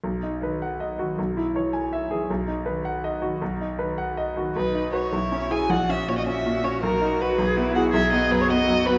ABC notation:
X:1
M:6/8
L:1/16
Q:3/8=107
K:B
V:1 name="Violin"
z12 | z12 | z12 | z12 |
B4 c6 g2 | f2 e2 c d e4 c2 | A4 B6 f2 | e2 d2 B c d4 B2 |]
V:2 name="Grand piano"
B,,,2 D2 B2 f2 d2 F2 | B,,,2 E2 c2 g2 e2 G2 | B,,,2 D2 B2 f2 d2 F2 | B,,,2 D2 B2 f2 d2 F2 |
B,,,2 D2 [FB]2 B,,,2 C2 [EG]2 | A,,,2 C2 A,,2 C2 A,,2 C2 | B,,,2 D2 F2 B,,,2 B,2 [EG]2 | B,,,2 B,2 F,,2 B,2 F,,2 B,2 |]
V:3 name="Cello"
z4 D,2 z4 D,2 | z4 E,2 z4 E,2 | z4 D,2 z4 D,2 | z4 D,2 z4 D,2 |
D6 E6 | F12- | F6 G2 E2 F2 | G6 F6 |]